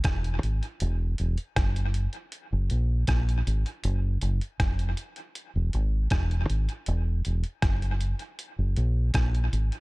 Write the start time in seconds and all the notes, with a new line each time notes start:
0.04 E1, kick, cross-stick, closed hi-hat
0.24 closed hi-hat
0.43 G#1, closed hi-hat
0.63 closed hi-hat
0.80 E1, closed hi-hat
1.18 E1, closed hi-hat
1.38 closed hi-hat
1.56 F#1, kick, cross-stick, closed hi-hat
1.76 closed hi-hat
1.94 closed hi-hat
2.13 closed hi-hat
2.32 closed hi-hat
2.52 F#1
2.70 A#1, closed hi-hat
3.07 A#1, kick, cross-stick, closed hi-hat
3.29 closed hi-hat
3.47 G#1, closed hi-hat
3.66 closed hi-hat
3.84 F#1, closed hi-hat
4.21 F#1, closed hi-hat
4.41 closed hi-hat
4.60 F1, kick, cross-stick, closed hi-hat
4.79 closed hi-hat
4.97 closed hi-hat
5.16 closed hi-hat
5.35 closed hi-hat
5.55 E1
5.73 G#1, closed hi-hat
6.10 E1, kick, cross-stick, closed hi-hat
6.31 closed hi-hat
6.50 G#1, closed hi-hat
6.69 closed hi-hat
6.86 E1, closed hi-hat
7.25 E1, closed hi-hat
7.44 closed hi-hat
7.62 F#1, kick, cross-stick, closed hi-hat
7.82 closed hi-hat
8.01 closed hi-hat
8.19 closed hi-hat
8.39 closed hi-hat
8.59 F#1
8.76 A#1, closed hi-hat
9.14 A#1, kick, cross-stick, closed hi-hat
9.35 closed hi-hat
9.53 G#1, closed hi-hat
9.72 closed hi-hat